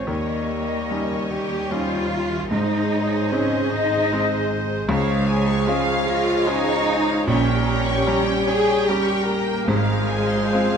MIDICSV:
0, 0, Header, 1, 12, 480
1, 0, Start_track
1, 0, Tempo, 809717
1, 56, Time_signature, 3, 2, 24, 8
1, 1974, Tempo, 782269
1, 3414, Tempo, 801068
1, 5814, Tempo, 841515
1, 6436, End_track
2, 0, Start_track
2, 0, Title_t, "Violin section"
2, 0, Program_c, 0, 48
2, 60, Note_on_c, 0, 73, 60
2, 1478, Note_off_c, 0, 73, 0
2, 1490, Note_on_c, 0, 72, 73
2, 2909, Note_off_c, 0, 72, 0
2, 2940, Note_on_c, 0, 73, 68
2, 3049, Note_off_c, 0, 73, 0
2, 3067, Note_on_c, 0, 77, 70
2, 3171, Note_on_c, 0, 80, 77
2, 3180, Note_off_c, 0, 77, 0
2, 3293, Note_off_c, 0, 80, 0
2, 3295, Note_on_c, 0, 85, 66
2, 3405, Note_on_c, 0, 80, 70
2, 3416, Note_off_c, 0, 85, 0
2, 3525, Note_on_c, 0, 77, 78
2, 3530, Note_off_c, 0, 80, 0
2, 3644, Note_on_c, 0, 73, 72
2, 3649, Note_off_c, 0, 77, 0
2, 3766, Note_on_c, 0, 77, 70
2, 3769, Note_off_c, 0, 73, 0
2, 3883, Note_on_c, 0, 80, 78
2, 3889, Note_off_c, 0, 77, 0
2, 4007, Note_off_c, 0, 80, 0
2, 4008, Note_on_c, 0, 85, 76
2, 4125, Note_on_c, 0, 80, 77
2, 4130, Note_off_c, 0, 85, 0
2, 4248, Note_on_c, 0, 77, 69
2, 4250, Note_off_c, 0, 80, 0
2, 4371, Note_on_c, 0, 73, 82
2, 4372, Note_off_c, 0, 77, 0
2, 4485, Note_off_c, 0, 73, 0
2, 4486, Note_on_c, 0, 79, 71
2, 4605, Note_on_c, 0, 82, 80
2, 4611, Note_off_c, 0, 79, 0
2, 4722, Note_on_c, 0, 85, 73
2, 4730, Note_off_c, 0, 82, 0
2, 4848, Note_off_c, 0, 85, 0
2, 4852, Note_on_c, 0, 82, 82
2, 4958, Note_on_c, 0, 79, 73
2, 4973, Note_off_c, 0, 82, 0
2, 5081, Note_on_c, 0, 73, 69
2, 5087, Note_off_c, 0, 79, 0
2, 5207, Note_on_c, 0, 79, 66
2, 5210, Note_off_c, 0, 73, 0
2, 5312, Note_on_c, 0, 82, 71
2, 5332, Note_off_c, 0, 79, 0
2, 5424, Note_on_c, 0, 85, 67
2, 5444, Note_off_c, 0, 82, 0
2, 5545, Note_on_c, 0, 82, 70
2, 5559, Note_off_c, 0, 85, 0
2, 5670, Note_on_c, 0, 79, 71
2, 5679, Note_off_c, 0, 82, 0
2, 5796, Note_on_c, 0, 72, 75
2, 5803, Note_off_c, 0, 79, 0
2, 5915, Note_off_c, 0, 72, 0
2, 5918, Note_on_c, 0, 77, 65
2, 6044, Note_on_c, 0, 80, 77
2, 6045, Note_off_c, 0, 77, 0
2, 6158, Note_on_c, 0, 84, 65
2, 6168, Note_off_c, 0, 80, 0
2, 6277, Note_on_c, 0, 80, 64
2, 6286, Note_off_c, 0, 84, 0
2, 6395, Note_on_c, 0, 77, 61
2, 6407, Note_off_c, 0, 80, 0
2, 6436, Note_off_c, 0, 77, 0
2, 6436, End_track
3, 0, Start_track
3, 0, Title_t, "Violin section"
3, 0, Program_c, 1, 48
3, 49, Note_on_c, 1, 75, 66
3, 1472, Note_off_c, 1, 75, 0
3, 1495, Note_on_c, 1, 75, 71
3, 2912, Note_off_c, 1, 75, 0
3, 2938, Note_on_c, 1, 77, 91
3, 4351, Note_off_c, 1, 77, 0
3, 4367, Note_on_c, 1, 79, 84
3, 5787, Note_off_c, 1, 79, 0
3, 5815, Note_on_c, 1, 77, 89
3, 6436, Note_off_c, 1, 77, 0
3, 6436, End_track
4, 0, Start_track
4, 0, Title_t, "Clarinet"
4, 0, Program_c, 2, 71
4, 52, Note_on_c, 2, 70, 58
4, 778, Note_on_c, 2, 79, 73
4, 787, Note_off_c, 2, 70, 0
4, 1017, Note_on_c, 2, 77, 75
4, 1025, Note_off_c, 2, 79, 0
4, 1332, Note_off_c, 2, 77, 0
4, 1487, Note_on_c, 2, 75, 87
4, 1977, Note_on_c, 2, 73, 79
4, 1986, Note_off_c, 2, 75, 0
4, 2214, Note_on_c, 2, 75, 86
4, 2223, Note_off_c, 2, 73, 0
4, 2700, Note_off_c, 2, 75, 0
4, 2940, Note_on_c, 2, 68, 100
4, 3632, Note_off_c, 2, 68, 0
4, 3645, Note_on_c, 2, 77, 87
4, 3873, Note_on_c, 2, 75, 102
4, 3882, Note_off_c, 2, 77, 0
4, 4377, Note_on_c, 2, 73, 107
4, 4386, Note_off_c, 2, 75, 0
4, 5091, Note_on_c, 2, 80, 94
4, 5100, Note_off_c, 2, 73, 0
4, 5333, Note_on_c, 2, 79, 79
4, 5342, Note_off_c, 2, 80, 0
4, 5555, Note_on_c, 2, 70, 81
4, 5564, Note_off_c, 2, 79, 0
4, 5805, Note_off_c, 2, 70, 0
4, 5812, Note_on_c, 2, 68, 93
4, 6436, Note_off_c, 2, 68, 0
4, 6436, End_track
5, 0, Start_track
5, 0, Title_t, "Flute section"
5, 0, Program_c, 3, 73
5, 60, Note_on_c, 3, 75, 78
5, 855, Note_off_c, 3, 75, 0
5, 1029, Note_on_c, 3, 72, 75
5, 1261, Note_on_c, 3, 70, 59
5, 1263, Note_off_c, 3, 72, 0
5, 1494, Note_on_c, 3, 72, 68
5, 1499, Note_off_c, 3, 70, 0
5, 1731, Note_off_c, 3, 72, 0
5, 1731, Note_on_c, 3, 73, 76
5, 1972, Note_off_c, 3, 73, 0
5, 1974, Note_on_c, 3, 75, 99
5, 2789, Note_off_c, 3, 75, 0
5, 2931, Note_on_c, 3, 77, 86
5, 3166, Note_off_c, 3, 77, 0
5, 3171, Note_on_c, 3, 73, 77
5, 3409, Note_off_c, 3, 73, 0
5, 3416, Note_on_c, 3, 77, 100
5, 3650, Note_off_c, 3, 77, 0
5, 3652, Note_on_c, 3, 75, 85
5, 3890, Note_on_c, 3, 73, 82
5, 3892, Note_off_c, 3, 75, 0
5, 4124, Note_on_c, 3, 72, 80
5, 4131, Note_off_c, 3, 73, 0
5, 4362, Note_on_c, 3, 70, 92
5, 4366, Note_off_c, 3, 72, 0
5, 4839, Note_off_c, 3, 70, 0
5, 4851, Note_on_c, 3, 73, 98
5, 5326, Note_on_c, 3, 70, 88
5, 5335, Note_off_c, 3, 73, 0
5, 6269, Note_off_c, 3, 70, 0
5, 6281, Note_on_c, 3, 72, 74
5, 6436, Note_off_c, 3, 72, 0
5, 6436, End_track
6, 0, Start_track
6, 0, Title_t, "Cor anglais"
6, 0, Program_c, 4, 69
6, 0, Note_on_c, 4, 73, 56
6, 1315, Note_off_c, 4, 73, 0
6, 1498, Note_on_c, 4, 72, 70
6, 2931, Note_on_c, 4, 73, 69
6, 2941, Note_off_c, 4, 72, 0
6, 5647, Note_off_c, 4, 73, 0
6, 5820, Note_on_c, 4, 72, 70
6, 6436, Note_off_c, 4, 72, 0
6, 6436, End_track
7, 0, Start_track
7, 0, Title_t, "Viola section"
7, 0, Program_c, 5, 48
7, 62, Note_on_c, 5, 67, 64
7, 1479, Note_off_c, 5, 67, 0
7, 1499, Note_on_c, 5, 68, 74
7, 2936, Note_off_c, 5, 68, 0
7, 2943, Note_on_c, 5, 68, 84
7, 4353, Note_off_c, 5, 68, 0
7, 4376, Note_on_c, 5, 67, 93
7, 5792, Note_off_c, 5, 67, 0
7, 5810, Note_on_c, 5, 68, 86
7, 6436, Note_off_c, 5, 68, 0
7, 6436, End_track
8, 0, Start_track
8, 0, Title_t, "Cello section"
8, 0, Program_c, 6, 48
8, 50, Note_on_c, 6, 58, 71
8, 783, Note_on_c, 6, 67, 83
8, 787, Note_off_c, 6, 58, 0
8, 1019, Note_on_c, 6, 65, 96
8, 1023, Note_off_c, 6, 67, 0
8, 1485, Note_on_c, 6, 63, 99
8, 1496, Note_off_c, 6, 65, 0
8, 1959, Note_off_c, 6, 63, 0
8, 1961, Note_on_c, 6, 61, 94
8, 2202, Note_on_c, 6, 63, 93
8, 2212, Note_off_c, 6, 61, 0
8, 2695, Note_off_c, 6, 63, 0
8, 2921, Note_on_c, 6, 56, 98
8, 3622, Note_off_c, 6, 56, 0
8, 3647, Note_on_c, 6, 65, 105
8, 3885, Note_off_c, 6, 65, 0
8, 3890, Note_on_c, 6, 63, 124
8, 4368, Note_on_c, 6, 61, 110
8, 4373, Note_off_c, 6, 63, 0
8, 5078, Note_off_c, 6, 61, 0
8, 5093, Note_on_c, 6, 68, 113
8, 5330, Note_on_c, 6, 67, 101
8, 5336, Note_off_c, 6, 68, 0
8, 5571, Note_off_c, 6, 67, 0
8, 5571, Note_on_c, 6, 58, 97
8, 5809, Note_off_c, 6, 58, 0
8, 5809, Note_on_c, 6, 56, 118
8, 6436, Note_off_c, 6, 56, 0
8, 6436, End_track
9, 0, Start_track
9, 0, Title_t, "French horn section"
9, 0, Program_c, 7, 60
9, 59, Note_on_c, 7, 58, 61
9, 777, Note_off_c, 7, 58, 0
9, 786, Note_on_c, 7, 67, 74
9, 1025, Note_off_c, 7, 67, 0
9, 1031, Note_on_c, 7, 65, 89
9, 1411, Note_off_c, 7, 65, 0
9, 1512, Note_on_c, 7, 63, 82
9, 1972, Note_off_c, 7, 63, 0
9, 1980, Note_on_c, 7, 61, 82
9, 2220, Note_on_c, 7, 63, 80
9, 2222, Note_off_c, 7, 61, 0
9, 2703, Note_off_c, 7, 63, 0
9, 2926, Note_on_c, 7, 56, 88
9, 3625, Note_off_c, 7, 56, 0
9, 3644, Note_on_c, 7, 65, 96
9, 3888, Note_off_c, 7, 65, 0
9, 3898, Note_on_c, 7, 63, 100
9, 4377, Note_off_c, 7, 63, 0
9, 4378, Note_on_c, 7, 61, 103
9, 5083, Note_off_c, 7, 61, 0
9, 5095, Note_on_c, 7, 68, 97
9, 5337, Note_off_c, 7, 68, 0
9, 5342, Note_on_c, 7, 67, 88
9, 5567, Note_on_c, 7, 58, 93
9, 5577, Note_off_c, 7, 67, 0
9, 5806, Note_off_c, 7, 58, 0
9, 5808, Note_on_c, 7, 56, 93
9, 6436, Note_off_c, 7, 56, 0
9, 6436, End_track
10, 0, Start_track
10, 0, Title_t, "Grand piano"
10, 0, Program_c, 8, 0
10, 0, Control_c, 8, 64, 127
10, 0, Note_on_c, 8, 56, 43
10, 0, Note_on_c, 8, 61, 46
10, 0, Note_on_c, 8, 65, 49
10, 42, Note_on_c, 8, 39, 68
10, 46, Note_on_c, 8, 51, 59
10, 67, Control_c, 8, 64, 0
10, 69, Note_off_c, 8, 56, 0
10, 71, Note_off_c, 8, 61, 0
10, 72, Note_off_c, 8, 65, 0
10, 174, Control_c, 8, 64, 127
10, 539, Note_on_c, 8, 55, 52
10, 542, Note_on_c, 8, 61, 45
10, 543, Note_on_c, 8, 63, 54
10, 999, Note_off_c, 8, 55, 0
10, 1000, Note_off_c, 8, 61, 0
10, 1001, Note_off_c, 8, 63, 0
10, 1013, Note_on_c, 8, 55, 54
10, 1019, Note_on_c, 8, 63, 54
10, 1020, Note_on_c, 8, 61, 57
10, 1469, Note_off_c, 8, 39, 0
10, 1469, Note_off_c, 8, 55, 0
10, 1471, Note_off_c, 8, 51, 0
10, 1472, Note_off_c, 8, 61, 0
10, 1472, Note_off_c, 8, 63, 0
10, 1488, Note_on_c, 8, 44, 73
10, 1494, Note_on_c, 8, 32, 65
10, 1511, Control_c, 8, 64, 0
10, 1606, Control_c, 8, 64, 127
10, 1968, Note_on_c, 8, 56, 52
10, 1968, Note_on_c, 8, 60, 60
10, 1968, Note_on_c, 8, 63, 63
10, 2435, Note_off_c, 8, 56, 0
10, 2435, Note_off_c, 8, 60, 0
10, 2435, Note_off_c, 8, 63, 0
10, 2463, Note_on_c, 8, 56, 60
10, 2465, Note_on_c, 8, 60, 63
10, 2466, Note_on_c, 8, 63, 71
10, 2908, Note_off_c, 8, 44, 0
10, 2911, Note_off_c, 8, 32, 0
10, 2914, Note_off_c, 8, 56, 0
10, 2914, Note_off_c, 8, 60, 0
10, 2915, Note_off_c, 8, 63, 0
10, 2927, Note_on_c, 8, 49, 76
10, 2930, Note_on_c, 8, 37, 92
10, 2950, Control_c, 8, 64, 0
10, 3026, Control_c, 8, 64, 127
10, 3410, Note_on_c, 8, 56, 62
10, 3418, Note_on_c, 8, 65, 73
10, 3419, Note_on_c, 8, 61, 70
10, 3867, Note_off_c, 8, 56, 0
10, 3871, Note_off_c, 8, 61, 0
10, 3871, Note_off_c, 8, 65, 0
10, 3889, Note_on_c, 8, 56, 64
10, 3892, Note_on_c, 8, 65, 69
10, 3894, Note_on_c, 8, 61, 61
10, 4345, Note_off_c, 8, 49, 0
10, 4347, Note_off_c, 8, 37, 0
10, 4349, Note_off_c, 8, 56, 0
10, 4350, Note_off_c, 8, 65, 0
10, 4351, Note_off_c, 8, 61, 0
10, 4371, Note_on_c, 8, 46, 93
10, 4373, Note_on_c, 8, 34, 79
10, 4386, Control_c, 8, 64, 0
10, 4490, Control_c, 8, 64, 127
10, 4849, Note_on_c, 8, 55, 66
10, 4851, Note_on_c, 8, 61, 65
10, 4854, Note_on_c, 8, 67, 73
10, 5310, Note_off_c, 8, 55, 0
10, 5311, Note_off_c, 8, 61, 0
10, 5313, Note_off_c, 8, 67, 0
10, 5339, Note_on_c, 8, 55, 67
10, 5345, Note_on_c, 8, 61, 64
10, 5347, Note_on_c, 8, 67, 71
10, 5789, Note_off_c, 8, 46, 0
10, 5790, Note_off_c, 8, 34, 0
10, 5792, Note_off_c, 8, 55, 0
10, 5795, Note_off_c, 8, 61, 0
10, 5796, Note_off_c, 8, 67, 0
10, 5812, Note_on_c, 8, 32, 77
10, 5814, Note_on_c, 8, 44, 93
10, 5826, Control_c, 8, 64, 0
10, 5928, Control_c, 8, 64, 127
10, 6298, Note_on_c, 8, 56, 65
10, 6300, Note_on_c, 8, 60, 64
10, 6306, Note_on_c, 8, 65, 62
10, 6436, Note_off_c, 8, 32, 0
10, 6436, Note_off_c, 8, 44, 0
10, 6436, Note_off_c, 8, 56, 0
10, 6436, Note_off_c, 8, 60, 0
10, 6436, Note_off_c, 8, 65, 0
10, 6436, End_track
11, 0, Start_track
11, 0, Title_t, "Bassoon"
11, 0, Program_c, 10, 70
11, 50, Note_on_c, 10, 55, 56
11, 1311, Note_off_c, 10, 55, 0
11, 1491, Note_on_c, 10, 56, 68
11, 2931, Note_on_c, 10, 53, 76
11, 2940, Note_off_c, 10, 56, 0
11, 4368, Note_off_c, 10, 53, 0
11, 4371, Note_on_c, 10, 55, 85
11, 5625, Note_off_c, 10, 55, 0
11, 5808, Note_on_c, 10, 53, 81
11, 6436, Note_off_c, 10, 53, 0
11, 6436, End_track
12, 0, Start_track
12, 0, Title_t, "Double bass section"
12, 0, Program_c, 11, 48
12, 56, Note_on_c, 11, 39, 64
12, 1476, Note_off_c, 11, 39, 0
12, 1490, Note_on_c, 11, 32, 63
12, 2909, Note_off_c, 11, 32, 0
12, 2928, Note_on_c, 11, 37, 85
12, 3330, Note_off_c, 11, 37, 0
12, 4371, Note_on_c, 11, 34, 88
12, 4773, Note_off_c, 11, 34, 0
12, 5807, Note_on_c, 11, 32, 88
12, 6208, Note_off_c, 11, 32, 0
12, 6436, End_track
0, 0, End_of_file